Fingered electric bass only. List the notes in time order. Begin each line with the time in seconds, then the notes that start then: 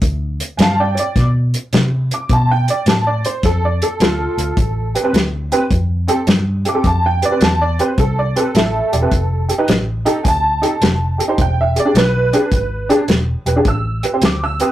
0.02 D2
0.58 G2
1.16 B2
1.73 C3
2.30 B2
2.86 A2
3.43 F2
4.00 D2
4.38 D2
4.57 A1
5.13 D2
5.70 F2
6.27 G2
6.84 F2
7.41 E2
7.98 C2
8.55 A1
8.93 E1
9.12 F1
9.68 A1
10.25 D2
10.81 F1
11.39 E1
11.94 B1
12.52 G#1
13.08 E1
13.46 E1
13.65 A1
14.22 D2